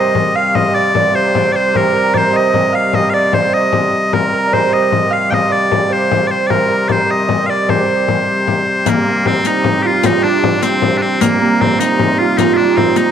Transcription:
Already playing: hurdy-gurdy C3 G3, harp A#4 C5 D#5, bagpipes D#5
0.15 frame drum
0.35 harp F5, bagpipes F5
0.55 bagpipes D#5, harp D#5, frame drum
0.75 bagpipes D5, harp D5, frame drum
0.95 harp D5, frame drum
1.15 harp C5, bagpipes C5, frame drum
1.35 harp D5, frame drum
1.52 harp C5, bagpipes C5 D5
1.74 harp A#4, bagpipes A#4, frame drum
1.93 harp A#4, frame drum
2.14 harp C5, bagpipes C5 D5, frame drum
2.33 harp D#5, bagpipes D#5, frame drum
2.53 harp D#5, frame drum
2.72 harp F5, bagpipes F5
2.93 harp D#5, bagpipes D#5, frame drum
3.10 harp D5, bagpipes F5
3.14 bagpipes D5
3.33 harp C5, bagpipes C5, frame drum
3.54 bagpipes D#5, harp D#5
3.73 frame drum
3.93 frame drum
4.12 hurdy-gurdy C3 G3, harp A#4, bagpipes A#4, frame drum
4.33 harp A#4, frame drum
4.47 harp D5
4.53 harp C5, bagpipes C5, frame drum
4.73 harp D#5, bagpipes D#5, frame drum
4.92 frame drum
5.10 harp F5, bagpipes F5
5.30 harp D#5, bagpipes G5, frame drum
5.34 bagpipes D#5
5.50 harp D5, bagpipes D5, frame drum
5.72 frame drum
5.90 harp C5, bagpipes C5, frame drum
6.11 frame drum
6.27 harp C5, bagpipes C5 D5
6.47 harp A#4, bagpipes A#4 D5, frame drum
6.70 harp A#4, frame drum
6.88 bagpipes C5 D5, frame drum
7.10 harp D#5, bagpipes D#5, frame drum
7.29 harp D#5, frame drum
7.46 harp D5, bagpipes D5 F5
7.68 harp C5, bagpipes C5, frame drum
8.08 frame drum
8.48 frame drum
8.85 hurdy-gurdy C3 G3, harp A#3, bagpipes A#3, riq, frame drum
9.06 harp A#3, frame drum
9.26 harp C4, bagpipes C4, frame drum
9.45 bagpipes D#4, harp D#4, riq, frame drum
9.64 frame drum
9.82 harp F4, bagpipes F4 G4
10.03 harp D#4, bagpipes D#4, riq, frame drum
10.23 bagpipes D4, harp D4, frame drum
10.44 frame drum
10.62 harp C4, bagpipes C4, riq, frame drum
10.82 frame drum
10.98 bagpipes D4
11.02 bagpipes C4
11.21 harp A#3, bagpipes A#3, riq, frame drum
11.41 harp A#3, frame drum
11.61 bagpipes C4, harp C4, frame drum
11.79 bagpipes D#4, harp D#4, riq, frame drum
11.99 frame drum
12.18 bagpipes F4, harp F4
12.37 bagpipes D#4, harp D#4, riq, frame drum
12.54 bagpipes D4 F4, harp D#4
12.64 harp D#4
12.77 bagpipes C4, harp C4, frame drum
12.96 bagpipes D#4, harp D#4, riq

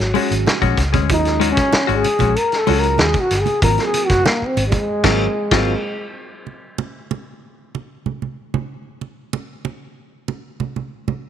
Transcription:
Already playing: trombone F#3
0.00 fingered electric bass G#1
0.14 upright piano F#3 G#3 C#4 F#4, clean electric guitar G#3 C#4 F#4, open hi-hat, muted conga
0.31 fingered electric bass G#1, closed hi-hat
0.46 snare, high conga
0.62 fingered electric bass A#1, clean electric guitar G#3 C#4 F#4, kick, closed hi-hat, high conga
0.77 fingered electric bass C#2, kick, snare, closed hi-hat
0.93 fingered electric bass D2, clean electric guitar G#3 C#4 G#4, kick, closed hi-hat, high conga
1.09 fingered electric bass D#2, upright piano F3 G#3 C#4 F4, trombone D#4, kick, closed hi-hat
1.16 upright piano F#3
1.25 snare, closed hi-hat
1.40 clean electric guitar G#3 C#4 F#4, closed hi-hat, muted conga
1.52 trombone C#4
1.57 kick, snare, closed hi-hat
1.73 muted fingered electric bass stroke, snare, high conga
1.87 fingered electric bass G#1, clean electric guitar G#3 C#4 F#4, closed hi-hat
1.95 trombone G#4
2.04 closed hi-hat, muted conga
2.19 fingered electric bass A#1, clean electric guitar G#3 C#4 F#4, kick, closed hi-hat, low conga
2.36 trombone A#4, closed hi-hat
2.52 snare, closed hi-hat
2.58 trombone A4
2.67 fingered electric bass C#2, upright piano F#3 G#3 C#4 F4, clean electric guitar G#3 C#4 F#4, open hi-hat, muted conga
2.79 trombone A#4
2.83 closed hi-hat
2.98 fingered electric bass D#2, trombone G#4, snare, high conga
3.14 kick, closed hi-hat, high conga
3.20 trombone F#4
3.30 fingered electric bass G1, snare, closed hi-hat
3.41 trombone G#4
3.46 closed hi-hat, high conga
3.62 fingered electric bass G#1, upright piano F#3 A#3 C4 F4, trombone A#4, kick, closed hi-hat
3.78 snare, closed hi-hat
3.84 trombone G#4
3.94 closed hi-hat, muted conga
4.06 fingered electric bass F#1, trombone F#4, kick, snare, closed hi-hat
4.26 trombone A#3, snare, high conga
4.42 muted fingered electric bass stroke
4.47 trombone C4
4.57 fingered electric bass G#1, closed hi-hat, muted conga
4.67 trombone G#3
4.72 kick, closed hi-hat, low conga
5.04 fingered electric bass G#1, upright piano F#3 A#3 C4 F4, clean electric guitar F#3 C4 F4, kick, snare, crash
5.51 fingered electric bass G#1, upright piano F#3 A#3 C4 F4, clean electric guitar F#3 C4 F4, kick, snare, crash
6.47 muted conga
6.78 high conga
7.11 muted conga
7.75 muted conga
8.06 high conga
8.22 high conga
8.54 high conga
9.01 muted conga
9.33 high conga
9.65 muted conga
10.28 muted conga
10.60 high conga
10.76 high conga
11.08 high conga

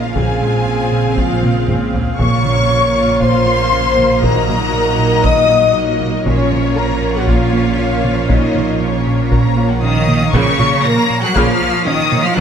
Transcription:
Already playing: double bass section A#1, cello section A#2, trombone section C#3 A#3, analog synth pad C#3 A#3 A#4 F5, viola section A#3 F4, violin section F5
0.03 french horn section F4, violin section F5
0.15 analog synth bass A#2, synth pluck F3, viola section C4, analog synth pad C4 G#4, trombone section C4, french horn section G#4, violin section G#5, taiko
0.41 analog synth bass A#2, synth pluck G#3
0.67 analog synth bass A#2
0.92 analog synth bass A#2
1.16 analog synth bass A#2, synth pluck F3, french horn section F4, violin section F5, taiko
1.43 analog synth bass A#3, synth pluck C4, taiko mid
1.68 analog synth bass A#2, synth pluck G#3, taiko low-mid
1.94 analog synth bass A#3, taiko low
2.18 double bass section A#1, analog synth bass A#2, cello section A#2, trombone section F3 A#3, analog synth pad A#3 A#4, viola section A#3 F4, synth pluck A#3, french horn section C#5, violin section F5 C#6, taiko
2.44 analog synth bass A#2, synth pluck C#4, taiko mid
2.70 analog synth bass A#2
2.95 analog synth bass A#2
3.21 analog synth bass A#2, synth pluck A#3, french horn section C5, violin section C6, taiko
3.46 analog synth bass A#3, synth pluck F4
3.72 analog synth bass A#2, synth pluck C#4
3.97 analog synth bass A#3, taiko mid
4.22 analog synth bass A#2, synth pluck D#3, analog synth pad F#3 D#5, trombone section F#3 D#4, viola section F#4, french horn section A#4, violin section D#5 A#5, taiko
4.48 analog synth bass A#2, synth pluck F#3, taiko mid
4.74 analog synth bass A#2
4.99 analog synth bass A#2
5.24 analog synth bass A#2, synth pluck D#3, french horn section D#5, violin section D#6, taiko
5.49 analog synth bass A#3, synth pluck A#3
5.74 analog synth bass A#2, synth pluck F#3, french horn section D#4, violin section D#5
6.01 analog synth bass A#3, taiko mid
6.25 double bass section A#1, analog synth bass A#2, cello section A#2, analog synth pad F3 C#5, trombone section F3 C#4, viola section A#3 F4, synth pluck A#3, french horn section C#4, violin section C#5, taiko
6.51 analog synth bass A#2, synth pluck C#4, taiko mid
6.77 analog synth bass A#2, french horn section A#4, violin section A#5
7.02 analog synth bass A#2
7.15 french horn section F#4, violin section F#5
7.27 analog synth bass A#2, synth pluck A#3, french horn section F4, violin section F5, taiko
7.53 analog synth bass A#3, synth pluck F4
7.78 analog synth bass A#2, synth pluck C#4
8.04 analog synth bass A#3, taiko mid
8.29 analog synth bass A#2, analog synth pad A#3 A#4, synth pluck A#3, french horn section D#4, violin section D#5, taiko
8.55 analog synth bass A#2, synth pluck C#4, taiko mid
8.80 analog synth bass A#2, french horn section C#4, violin section C#5
9.07 analog synth bass A#2
9.31 analog synth bass A#2, synth pluck A#3, violin section A#5, taiko
9.57 analog synth bass A#3, synth pluck F4
9.71 violin section F#5
9.82 analog synth bass A#2, cello section D#3, synth pluck C#4, french horn section D#4, violin section D#5 F5 D#6
10.08 analog synth bass A#3, taiko mid
10.33 double bass section A#1, analog synth bass A#2, cello section C#3, viola section C#3 A#3, trombone section F3 A#3, analog synth pad F3 A#3 A#4 C#5, synth pluck A#3, french horn section C#4, violin section C#5 C#6, taiko
10.59 double bass section A#1, analog synth bass A#2, viola section A#3 F4, synth pluck C#4, taiko mid
10.84 analog synth bass A#2, cello section A#3, french horn section A#4, violin section A#5 A#6
11.10 analog synth bass A#2
11.23 cello section F#3, french horn section F#4, violin section F#5 F#6
11.35 double bass section A#1, analog synth bass A#2, viola section C#3 A#3, cello section F3, trombone section F3 A#3, synth pluck A#3, french horn section F4, violin section F5 F6, taiko
11.61 double bass section A#1, viola section A#3 F4, analog synth bass A#3, synth pluck F4
11.85 double bass section A#1, analog synth bass A#2, cello section D#3, viola section F3 C#4, synth pluck C#4, french horn section D#4, violin section D#5 D#6
12.12 analog synth bass A#3, taiko mid
12.24 cello section F3, french horn section F4, violin section F5 F6
12.36 double bass section A#1, analog synth bass A#2, viola section D#3 F#3, trombone section D#3 A#3, cello section F#3, analog synth pad F#3 D#5, french horn section F#4, violin section F#6, taiko

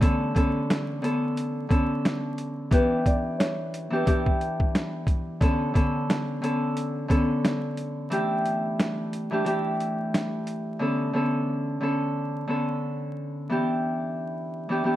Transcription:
Already playing: harp A3 G4
0.01 harp D3 B3 C#4 A4, kick, closed hi-hat
0.35 harp D3 B3 C#4 A4, kick, closed hi-hat
0.70 snare, closed hi-hat
1.02 harp D3 B3 C#4 A4, closed hi-hat
1.37 closed hi-hat
1.69 harp D3 B3 C#4 A4, kick, closed hi-hat
2.05 snare, closed hi-hat
2.38 closed hi-hat
2.71 harp E3 B3 D4 G4, upright piano B4, kick, closed hi-hat
3.06 upright piano D5, kick, closed hi-hat
3.39 upright piano C#5, snare, closed hi-hat
3.74 closed hi-hat
3.90 harp E3 B3 D4 G4, upright piano B4
4.05 harp E3 B3 D4 G4, kick, closed hi-hat
4.26 kick
4.41 closed hi-hat
4.60 kick
4.75 snare, closed hi-hat
5.07 kick, closed hi-hat
5.40 harp D3 B3 C#4 A4, kick, closed hi-hat
5.74 harp D3 B3 C#4 A4, kick, closed hi-hat
6.10 snare, closed hi-hat
6.42 harp D3 B3 C#4 A4, closed hi-hat
6.77 closed hi-hat
7.08 harp D3 B3 C#4 A4, kick, closed hi-hat
7.45 snare, closed hi-hat
7.77 closed hi-hat
8.10 harp E3 A3 D4 G4, closed hi-hat
8.46 closed hi-hat
8.80 snare, closed hi-hat
9.13 closed hi-hat
9.31 harp E3 A3 D4 G4
9.44 harp E3 A3 D4 G4, closed hi-hat
9.80 closed hi-hat
10.14 snare, closed hi-hat
10.47 closed hi-hat
10.79 harp D3 B3 C#4 A4
11.13 harp D3 B3 C#4 A4
11.80 harp D3 B3 C#4 A4
12.48 harp D3 B3 C#4 A4
13.49 harp E3 B3 D4 G4
14.69 harp E3 B3 D4 G4
14.84 harp E3 B3 D4 G4

